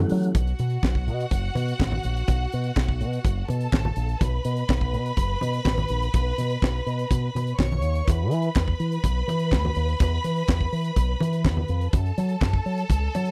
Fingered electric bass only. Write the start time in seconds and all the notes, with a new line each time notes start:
0.12 F#3
0.35 B1
0.59 B2
0.83 B1
1.07 B2
1.31 F#1
1.55 B2
1.80 A1
2.05 A#1
2.28 B1
2.54 B2
2.76 B1
3.01 B2
3.25 F#1
3.49 B2
3.73 A1
3.97 A#1
4.21 B1
4.45 B2
4.69 B1
4.93 B2
5.17 F#1
5.42 B2
5.66 A1
5.90 A#1
6.14 B1
6.38 B2
6.63 B1
6.86 B2
7.11 B2
7.35 B2
7.59 B1
7.83 D#2
8.08 E2
8.31 E3
8.56 E2
8.80 E3
9.04 B1
9.28 E3
9.52 D2
9.76 D#2
10.00 E2
10.24 E3
10.48 E2
10.72 E3
10.96 B1
11.21 E3
11.45 E2
11.69 F2
11.93 F#2
12.18 F#3
12.41 F#2
12.66 F#3
12.90 C#2
13.15 F#3